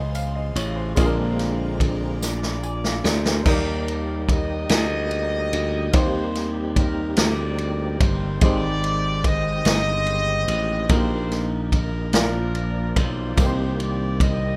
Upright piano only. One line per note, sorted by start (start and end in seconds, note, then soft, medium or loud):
0.00 1.00 C#3 medium
0.00 0.93 G#3 medium
0.00 0.94 C4 medium
0.00 0.94 C#4 medium
0.00 0.94 F4 medium
0.00 0.76 C5 medium
0.00 0.14 D#5 medium
0.15 0.35 F5 medium
0.35 0.55 D#5 medium
0.56 0.76 C#5 medium
0.76 1.16 C5 medium
0.95 2.18 A#2 medium
0.95 3.41 G#3 medium
0.95 3.41 A#3 medium
0.95 3.42 D4 medium
0.95 3.42 F4 medium
0.95 1.05 G#4 medium
1.05 2.64 A#4 medium
2.63 2.83 G#5 medium
2.84 3.04 F5 medium
3.04 3.24 D5 medium
3.24 3.45 A#4 medium
3.43 4.66 D#3 medium
3.43 5.89 G3 medium
3.43 5.89 A#3 medium
3.43 5.90 D#4 medium
3.43 5.91 A#4 medium
5.92 7.14 D#3 medium
5.92 8.37 A#3 medium
5.92 8.37 C4 medium
5.92 8.38 D#4 medium
5.92 8.38 G4 medium
5.96 8.39 C5 medium
8.41 9.62 G#2 medium
8.41 10.85 G#3 medium
8.41 10.86 C4 medium
8.41 10.86 D#4 medium
8.41 10.87 G4 medium
8.41 10.87 C5 medium
10.88 12.10 A#2 medium
10.88 12.13 D#4 medium
10.88 10.96 F#4 medium
10.88 12.14 A#4 medium
10.96 12.17 G4 medium
12.13 13.34 A#2 medium
12.13 13.38 F4 medium
12.13 13.38 A#4 medium
12.13 13.37 D5 medium
13.36 14.56 C3 medium
13.36 14.56 A#3 medium
13.36 14.56 C4 medium
13.36 14.56 D#4 medium
13.36 14.56 G4 medium
13.36 13.45 A#4 medium
13.46 14.56 C5 medium